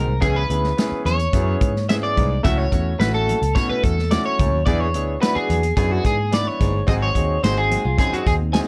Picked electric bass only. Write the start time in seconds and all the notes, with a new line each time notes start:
0.08 C2
0.22 C#2
0.50 D2
0.92 muted picked electric bass stroke
1.06 E2
1.33 F#2
1.61 G#2
2.17 C2
2.45 C#2
2.72 E2
3.00 A1
3.42 C#2
3.70 muted picked electric bass stroke
3.83 E2
4.39 C#2
4.52 D#2
4.66 E2
4.95 D2
5.36 muted picked electric bass stroke
5.50 E2
5.77 F#2
6.05 G#2
6.61 G1
6.88 G#1
7.15 D#2
7.44 G#1
7.85 C2
8.13 muted picked electric bass stroke
8.26 D#2